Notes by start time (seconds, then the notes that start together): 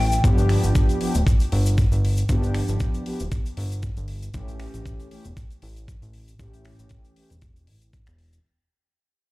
Already playing: A1
0.00 G5
0.12 closed hi-hat, cabasa
0.24 G1 F3 B3 D4 G4, kick, closed hi-hat, cabasa
0.38 closed hi-hat, cabasa
0.49 finger snap, open hi-hat
0.63 G1, closed hi-hat, cabasa
0.75 kick, closed hi-hat, cabasa
0.89 closed hi-hat, cabasa
1.01 F3 B3 D4 G4, open hi-hat
1.15 D1, closed hi-hat, cabasa
1.27 kick, closed hi-hat, cabasa
1.40 closed hi-hat, cabasa
1.52 G1, open hi-hat
1.66 closed hi-hat, cabasa
1.78 kick, closed hi-hat, cabasa
1.92 G1, closed hi-hat, cabasa
2.05 open hi-hat
2.17 closed hi-hat, cabasa
2.28 G1 F3 B3 D4 G4, kick, closed hi-hat, cabasa
2.43 closed hi-hat, cabasa
2.54 finger snap, open hi-hat
2.68 G1, closed hi-hat, cabasa
2.80 kick, closed hi-hat, cabasa
2.94 closed hi-hat, cabasa
3.06 F3 B3 D4 G4, open hi-hat
3.20 D1, closed hi-hat, cabasa
3.31 kick, closed hi-hat, cabasa
3.46 closed hi-hat, cabasa
3.57 G1, open hi-hat
3.72 closed hi-hat, cabasa
3.83 kick, closed hi-hat, cabasa
3.97 G1, closed hi-hat, cabasa
4.08 open hi-hat
4.22 closed hi-hat, cabasa
4.33 A1 E3 A3 C#4 G4, kick, closed hi-hat, cabasa
4.48 closed hi-hat, cabasa
4.59 finger snap, open hi-hat
4.74 A1, closed hi-hat, cabasa
4.85 kick, closed hi-hat, cabasa
5.00 closed hi-hat, cabasa
5.10 E3 A3 C#4 G4, open hi-hat
5.25 E1, closed hi-hat, cabasa
5.37 kick, closed hi-hat, cabasa
5.50 closed hi-hat, cabasa
5.62 A1, open hi-hat
5.76 closed hi-hat, cabasa
5.88 kick, closed hi-hat, cabasa
6.02 A1, closed hi-hat, cabasa
6.13 open hi-hat
6.28 closed hi-hat, cabasa
6.38 A1 E3 A3 C#4 G4, kick, closed hi-hat, cabasa
6.53 closed hi-hat, cabasa
6.65 finger snap, open hi-hat
6.79 A1, closed hi-hat, cabasa
6.89 kick, closed hi-hat, cabasa
7.05 closed hi-hat, cabasa
7.16 E3 A3 C#4 G4, open hi-hat
7.30 E1, closed hi-hat, cabasa
7.42 kick, closed hi-hat, cabasa
7.56 closed hi-hat, cabasa
7.67 A1, open hi-hat
7.82 closed hi-hat, cabasa
7.93 kick, closed hi-hat, cabasa
8.06 E1, finger snap, closed hi-hat, cabasa
8.18 open hi-hat
8.33 closed hi-hat, cabasa